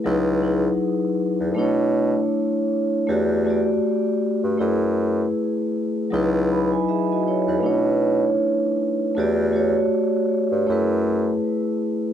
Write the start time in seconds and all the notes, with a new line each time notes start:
0.04 C#2 F#3 D#4 E4
0.09 B4
0.41 F#3 D#4 E4
0.46 G#4
1.40 E2
1.54 B2 A3 D4 E4
1.59 C#5
3.07 E2 A3 F#4 G4
3.12 D5
3.45 A3 F#4 G4
3.50 D5
4.44 G2
4.58 F#2 A3 E4 G#4
4.62 B4
6.11 C#2 F#3 D#4 E4
6.15 B4
6.51 D#5 B5
6.72 B4 G#5
6.88 G#4 E5
7.12 F#4 D#5
7.28 E4 C#5
7.48 E2 D#4 B4
7.61 B2 A3 D4 E4
7.66 C#5
9.15 E2 A3 F#4 G4
9.20 D5
9.51 A3 F#4 G4
9.56 C#5
10.52 G2
10.67 F#2 A3 E4 G#4
10.72 B4